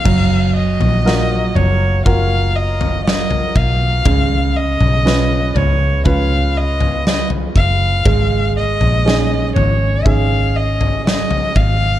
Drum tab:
CC |x---------------|----------------|----------------|
SD |----o-------o---|----o-------o---|----o-------o---|
FT |o--o--o-o--o-o--|o--o--o-o--o-o--|o--o--o-o--o-o--|
BD |o-------o-----o-|o-------o-----o-|o-------o-----o-|